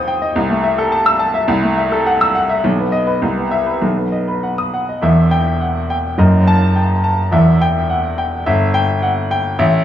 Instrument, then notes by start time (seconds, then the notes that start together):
grand piano
Already playing: D#2 C4 C5 D#5 G5 D#6
0.08 G5
0.22 D#5
0.36 C2
0.50 A3
0.64 E5
0.78 A4
0.92 A5
1.06 E6
1.20 A5
1.34 E5
1.48 C2
1.63 A3
1.77 E5
1.92 A4
2.06 F#5
2.21 E6
2.35 F#5
2.49 E5
2.64 B1
2.78 B3
2.92 D#5
3.07 B4
3.22 C2
3.37 B3
3.51 E5
3.66 B4
3.82 B1
3.97 B3
4.12 D#5
4.28 B4
4.43 F#5
4.58 D#6
4.73 F#5
4.89 D#5
5.01 E1 E2 E5
5.31 G5
5.61 F#5
5.90 G5
6.18 F#1 F#2 D#5
6.47 A5
6.75 G5
7.04 A5
7.32 E1 E2 E5
7.62 G5
7.90 F#5
8.18 G5
8.46 G1 E5
8.74 G5
9.03 F#5
9.31 G5
9.59 A1 E5